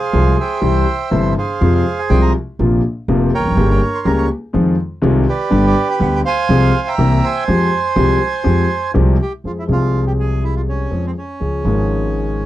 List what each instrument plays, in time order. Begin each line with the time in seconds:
Already playing: bandoneon G#4 C5 F5
0.13 grand piano C2 C3 F3 G#3 F4, upright bass C2
0.40 bandoneon C5 E5 G5
0.61 grand piano C2 C3 E3 G3 E4, upright bass C2
1.11 upright bass G1, grand piano G1 G2 C3 E3 G3 E4
1.38 bandoneon G#4 C5 F5
1.61 grand piano F2 C3 F3 G#3 F4, upright bass F2
1.75 bandoneon F5
1.99 bandoneon G#5
2.10 upright bass C2, grand piano C2 C3 F3 G#3 F4, bandoneon G5
2.22 bandoneon A#5
2.59 upright bass A#1, grand piano A#1 A#2 C3 F3 A#3 F4
3.08 upright bass F1, grand piano F1 F2 C3 F3 A#3 F4
3.34 bandoneon A#4 C#5 G5
3.39 upright bass E1, grand piano E2
3.45 upright bass F1, grand piano F2
3.51 upright bass F#1, grand piano F#2
3.57 upright bass G1, grand piano G1 G2 C#3 G3 A#3 G4
3.71 bandoneon G5
3.95 bandoneon C6
4.05 grand piano C#2 C#3 G3 A#3 G4, upright bass C#2, bandoneon A#5
4.18 bandoneon C#6
4.53 grand piano F2 D#3 F3 G#3 C4 F4, upright bass F2
5.02 grand piano C2 C3 D#3 G#3 C4 F4, upright bass C2
5.29 bandoneon G4 B4 D5
5.50 grand piano G1 G2 D3 G3 B3 G4, upright bass G1
5.67 bandoneon D5
5.91 bandoneon G5
5.99 grand piano D2 D3 G3 B3 G4, upright bass D2, bandoneon F#5
6.16 bandoneon G5
6.25 bandoneon C5 F5 G#5
6.49 upright bass C2, grand piano C2 C3 F3 G#3 C4 G#4
6.88 bandoneon E5 G5 A#5
6.98 upright bass C2, grand piano C2 C3 E3 A#3 C4 G4
7.24 bandoneon C5 G#5
7.48 grand piano F2 F3 G#3 C4 G4, upright bass F2
7.96 grand piano C2 C3 F3 G#3 C4 G4, upright bass C2
8.44 grand piano F2 F3 G#3 C4 G4, upright bass F2
8.94 grand piano C2 C3 F3 G#3 C4 G4, upright bass C2
9.22 bandoneon G4
9.44 upright bass F2, grand piano F2 F3 G#3 C4 G#4, bandoneon F4
9.59 bandoneon E4
9.67 upright bass C2, grand piano C2 C3 F3 G#3 C4
9.72 bandoneon F4, grand piano G#4
10.07 bandoneon G4
10.20 bandoneon G#4
10.44 bandoneon E4
10.56 bandoneon F4
10.69 bandoneon C#4
10.91 grand piano F2 F3 G#3 C4 G#4, upright bass F2
11.06 bandoneon C4
11.18 bandoneon C#4
11.40 grand piano C#2 C#3 F3 G#3 C#4 G#4, upright bass C#2
11.64 upright bass G#1, grand piano G#1 G#2 F3 G#3 C#4 G#4